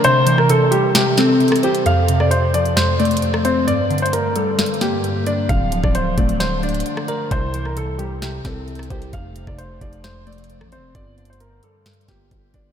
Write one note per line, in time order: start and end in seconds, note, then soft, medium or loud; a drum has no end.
0.04 0.48 C3 medium
0.04 0.36 C5 loud
0.04 closed hi-hat medium
0.26 1.40 E3 medium
0.26 closed hi-hat medium
0.38 0.48 A#4 medium
0.38 cross-stick medium
0.49 0.94 C3 medium
0.49 0.69 A4 medium
0.49 closed hi-hat medium
0.71 1.86 G3 medium
0.71 0.91 G4 medium
0.71 closed hi-hat medium
0.95 1.39 C3 medium
0.95 1.14 G4 medium
0.95 snare loud
0.95 closed hi-hat medium
1.18 1.86 C4 loud
1.18 1.61 A4 medium
1.18 snare medium
1.18 closed hi-hat medium
1.40 1.86 C3 medium
1.40 closed hi-hat soft
1.48 cross-stick loud
1.48 closed hi-hat medium
1.56 closed hi-hat medium
1.63 1.83 G4 medium
1.63 1.86 C5 medium
1.63 closed hi-hat medium
1.75 closed hi-hat medium
1.86 2.30 F2 loud
1.86 2.18 F5 loud
1.86 closed hi-hat medium
2.08 3.22 C3 medium
2.08 closed hi-hat medium
2.20 2.30 D5 medium
2.20 cross-stick medium
2.31 2.75 F2 medium
2.31 2.50 C5 medium
2.31 closed hi-hat medium
2.54 3.68 F3 medium
2.54 2.74 D5 medium
2.54 closed hi-hat medium
2.65 closed hi-hat soft
2.76 3.21 F2 medium
2.76 2.96 C5 medium
2.76 snare loud
2.76 closed hi-hat medium
2.99 3.68 A3 medium
2.99 3.42 D5 medium
2.99 closed hi-hat soft
3.05 closed hi-hat medium
3.11 closed hi-hat medium
3.17 closed hi-hat medium
3.22 3.68 F2 medium
3.22 closed hi-hat medium
3.34 cross-stick loud
3.45 3.68 C4 medium
3.45 3.64 C5 medium
3.45 closed hi-hat medium
3.67 4.11 G2 loud
3.67 4.00 D5 loud
3.67 closed hi-hat medium
3.90 5.04 D3 medium
3.90 closed hi-hat soft
3.98 closed hi-hat medium
4.02 4.12 C5 medium
4.02 closed hi-hat medium
4.13 4.57 G2 medium
4.13 4.33 A#4 medium
4.13 closed hi-hat medium
4.36 5.50 G3 medium
4.36 4.79 A4 medium
4.36 closed hi-hat medium
4.58 5.03 G2 loud
4.58 snare loud
4.58 closed hi-hat medium
4.66 closed hi-hat medium
4.74 closed hi-hat soft
4.81 5.49 A#3 medium
4.81 5.24 G4 medium
4.81 snare medium
4.81 closed hi-hat medium
5.04 5.49 G2 medium
5.04 closed hi-hat medium
5.26 5.49 D4 medium
5.26 5.46 D5 medium
5.26 closed hi-hat medium
5.49 5.82 D1 loud
5.49 5.94 D3 medium
5.49 5.81 F5 loud
5.49 kick loud
5.49 closed hi-hat medium
5.72 6.86 F3 medium
5.72 closed hi-hat medium
5.83 6.16 D1 loud
5.83 5.93 D5 medium
5.83 kick loud
5.83 cross-stick medium
5.95 6.39 D3 medium
5.95 6.14 C5 medium
5.95 closed hi-hat medium
6.18 6.83 D1 loud
6.18 7.31 A3 medium
6.18 6.37 D5 medium
6.18 kick loud
6.18 closed hi-hat medium
6.29 closed hi-hat soft
6.40 6.85 D3 medium
6.40 6.60 C5 medium
6.40 snare loud
6.40 closed hi-hat medium
6.63 7.31 D4 medium
6.63 7.06 D5 medium
6.63 closed hi-hat soft
6.69 closed hi-hat medium
6.74 closed hi-hat medium
6.80 closed hi-hat medium
6.86 7.31 D3 medium
6.86 closed hi-hat medium
6.97 cross-stick loud
7.08 7.28 A#4 medium
7.08 7.31 D5 medium
7.08 closed hi-hat medium
7.31 8.41 C2 loud
7.31 7.75 C3 loud
7.31 7.64 C5 loud
7.31 kick loud
7.31 closed hi-hat medium
7.54 8.68 E3 medium
7.54 closed hi-hat medium
7.65 7.75 A#4 medium
7.65 cross-stick medium
7.76 8.21 C3 medium
7.76 7.96 A4 medium
7.76 closed hi-hat medium
7.98 9.13 G3 medium
7.98 8.18 G4 medium
7.98 closed hi-hat medium
8.22 8.66 C3 medium
8.22 8.41 G4 medium
8.22 snare loud
8.22 closed hi-hat medium
8.45 8.89 C2 loud
8.45 9.13 C4 medium
8.45 8.88 A4 medium
8.45 kick medium
8.45 snare medium
8.45 closed hi-hat medium
8.67 9.13 C3 medium
8.67 closed hi-hat soft
8.75 cross-stick loud
8.75 closed hi-hat soft
8.83 closed hi-hat medium
8.90 9.12 C2 loud
8.90 9.10 G4 medium
8.90 9.13 C5 medium
8.90 kick loud
8.90 closed hi-hat medium
9.02 closed hi-hat medium
9.13 9.46 F1 loud
9.13 9.57 F2 loud
9.13 9.45 F5 loud
9.13 kick loud
9.13 closed hi-hat medium
9.36 10.50 C3 medium
9.36 closed hi-hat medium
9.47 9.80 F1 loud
9.47 9.57 D5 medium
9.47 kick medium
9.47 cross-stick medium
9.58 10.03 F2 medium
9.58 9.78 C5 medium
9.58 closed hi-hat medium
9.81 10.62 F1 loud
9.81 10.95 F3 medium
9.81 10.01 D5 medium
9.81 kick loud
9.81 closed hi-hat medium
9.93 closed hi-hat soft
10.04 10.48 F2 medium
10.04 10.23 C5 medium
10.04 snare loud
10.04 closed hi-hat medium
10.27 10.95 A3 medium
10.27 10.70 D5 medium
10.27 closed hi-hat soft
10.33 closed hi-hat medium
10.38 closed hi-hat medium
10.44 closed hi-hat medium
10.50 10.95 F2 medium
10.50 closed hi-hat medium
10.61 10.80 A1 medium
10.61 cross-stick loud
10.72 10.95 C4 medium
10.72 10.92 C5 medium
10.72 closed hi-hat medium
10.78 10.94 F1 loud
10.95 11.60 G1 loud
10.95 11.39 G2 loud
10.95 11.27 D5 loud
10.95 kick loud
10.95 closed hi-hat medium
11.18 12.31 D3 medium
11.18 closed hi-hat soft
11.25 closed hi-hat medium
11.30 11.39 C5 medium
11.30 closed hi-hat medium
11.40 11.85 G2 medium
11.40 11.60 A#4 medium
11.40 closed hi-hat medium
11.63 12.72 G3 medium
11.63 12.06 A4 medium
11.63 closed hi-hat medium
11.86 12.30 G2 loud
11.86 snare loud
11.86 closed hi-hat medium
11.93 closed hi-hat medium
12.01 closed hi-hat soft
12.08 12.30 G1 loud
12.08 12.72 A#3 medium
12.08 12.51 G4 medium
12.08 kick medium
12.08 snare medium
12.08 closed hi-hat medium
12.31 12.53 G1 loud
12.31 12.72 G2 medium
12.31 kick loud
12.31 closed hi-hat medium
12.54 12.72 G1 loud
12.54 12.72 D4 medium
12.54 12.72 D5 medium
12.54 kick loud
12.54 closed hi-hat medium